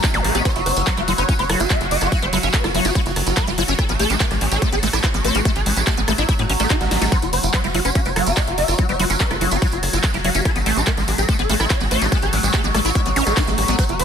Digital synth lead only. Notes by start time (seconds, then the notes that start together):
0.04 E4
0.14 A3
0.24 A3
0.35 A3
0.45 C#5
0.56 F#4
0.66 C#5
0.76 F#4
0.87 C#5
0.97 F#4
1.08 F#4
1.18 C#5
1.29 F#4
1.39 C#5
1.49 F#4
1.60 F#4
1.70 E5
1.81 F#4
1.91 E5
2.02 F#4
2.12 F#4
2.22 C#5
2.33 F#4
2.43 F#4
2.54 B4
2.64 F#4
2.75 F#4
2.85 F#4
2.95 F#4
3.06 F#4
3.27 F#4
3.37 B4
3.47 F#4
3.58 F#4
3.68 F#4
3.79 A4
3.89 A3
4.00 A4
4.10 A3
4.20 B4
4.31 A3
4.41 A3
4.52 A4
4.62 A3
4.73 A4
4.83 A3
4.93 A3
5.04 C#5
5.14 A3
5.25 C#5
5.35 A3
5.45 A3
5.56 A4
5.66 A3
5.77 A3
5.87 G#4
5.97 A3
6.08 A3
6.18 E4
6.29 A3
6.39 A3
6.60 A3
6.70 E4
6.81 A3
6.91 A3
7.02 A3
7.12 C#5
7.22 F#4
7.33 C#5
7.43 F#4
7.54 C#5
7.64 F#4
7.75 F#4
7.85 C#5
7.95 F#4
8.06 C#5
8.16 F#4
8.27 F#4
8.37 E5
8.47 F#4
8.58 E5
8.68 F#4
8.79 F#4
8.89 C#5
9.00 F#4
9.10 F#4
9.20 B4
9.31 F#4
9.41 F#4
9.52 F#4
9.62 F#4
9.72 F#4
9.93 F#4
10.04 B4
10.14 F#4
10.25 F#4
10.35 F#4
10.45 A4
10.56 A3
10.66 A4
10.77 A3
10.87 B4
10.97 A3
11.08 A3
11.18 A4
11.29 A3
11.39 A4
11.50 A3
11.60 A3
11.70 C#5
11.81 A3
11.91 C#5
12.02 A3
12.12 A3
12.22 A4
12.33 A3
12.43 A3
12.54 G#4
12.64 A3
12.74 A3
12.85 F#4
12.95 A3
13.06 A3
13.27 A3
13.37 E4
13.47 A3
13.58 A3
13.68 A3
13.79 C#5
13.89 F#4
14.00 C#5